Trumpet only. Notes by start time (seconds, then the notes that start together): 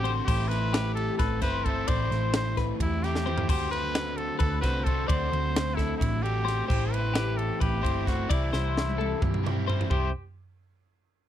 Already playing: G4
0.25 G4
0.48 B4
0.95 A4
1.17 A4
1.42 B4
1.65 A4
1.88 C5
2.36 C5
2.82 E4
3.04 G4
3.50 G4
3.71 B4
4.17 A4
4.38 A4
4.61 B4
4.84 A4
5.07 C5
5.75 E4
5.98 E4
6.23 G4
6.67 G4
6.93 B4
7.37 A4
7.61 G4
8.07 F#4
8.31 E4
9.91 G4